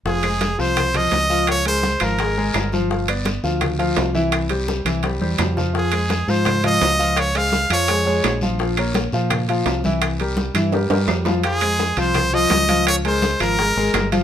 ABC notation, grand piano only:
X:1
M:4/4
L:1/8
Q:1/4=169
K:Fm
V:1 name="Grand piano"
[F,Ff] [A,Ac]2 [F,Ff]2 [F,Ff]2 [F,Ff]- | [F,Ff] [A,AB]2 [F,Ff] [A,AB] [A,AB]2 [F,Ff] | [F,Ff] [=B,=B=d]2 [F,Ff]2 [F,Ff]2 [=E,=E=e]- | [=E,=E=e] [G,Gc]2 [E,Ee] [G,Gc] [G,Gc]2 [F,Ff] |
[F,Ff] [A,Ac]2 [F,Ff]2 [F,Ff]2 [F,Ff]- | [F,Ff] [A,Ac]2 [F,Ff] [A,Ac] [A,Ad]2 [F,Ff] | [F,Ff] [B,Bd]2 [F,Ff]2 [F,Ff]2 [=E,=E=e]- | [=E,=E=e] [G,GB]2 [E,Ee] [G,GB] [G,GB]2 [F,Ff] |
[F,Ff] [A,Ac]2 [F,Ff]2 [F,Ff]2 [F,Ff]- | [F,Ff] [A,AB]2 [F,Ff] [A,AB] [A,AB]2 [F,Ff] |]